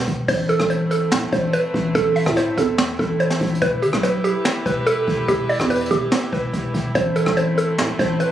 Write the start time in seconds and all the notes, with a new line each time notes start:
Already playing: B4
0.07 E1, kick, closed hi-hat
0.28 A1 A3 C4 E4 C5, kick, crash
0.49 A4, closed hi-hat
0.60 A1, kick, cross-stick
0.70 C5, closed hi-hat
0.91 A4, closed hi-hat
1.11 A2, snare, closed hi-hat
1.22 A1
1.32 A1 C5, kick, closed hi-hat
1.53 B4, closed hi-hat
1.74 A1, kick
1.95 A1 A4, kick, closed hi-hat
2.16 E5, open hi-hat
2.26 A2, kick, cross-stick
2.37 C5, cross-stick, closed hi-hat
2.58 E2 A4, kick, closed hi-hat
2.78 snare, closed hi-hat
2.99 A1 A4, kick
3.20 C5, closed hi-hat
3.30 snare
3.41 A1, kick, closed hi-hat
3.48 closed hi-hat
3.55 closed hi-hat
3.62 E1 E3 G4 B4, kick, closed hi-hat
3.82 G1 G4, closed hi-hat
3.93 B1, kick, cross-stick
4.03 B4, cross-stick, closed hi-hat
4.24 G4, closed hi-hat
4.45 snare, closed hi-hat
4.66 E1 B4, kick, closed hi-hat
4.87 A4, closed hi-hat
5.08 E1, kick
5.28 E1 G4, kick, closed hi-hat
5.49 D5, open hi-hat
5.60 E2, kick, cross-stick
5.70 B4, closed hi-hat
5.75 closed hi-hat
5.81 closed hi-hat
5.86 closed hi-hat
5.91 E1 G4, kick, closed hi-hat
6.12 snare, closed hi-hat
6.32 E1 B4, kick
6.53 E1, kick, closed hi-hat
6.74 E1, kick, closed hi-hat
6.95 A1 A3 C4 C5, kick, closed hi-hat
7.16 A4, closed hi-hat
7.26 A1, kick, cross-stick
7.37 C5, closed hi-hat
7.58 A4, closed hi-hat
7.78 A2, snare, closed hi-hat
7.89 A1
7.99 A1 C5, kick, closed hi-hat
8.20 B4, closed hi-hat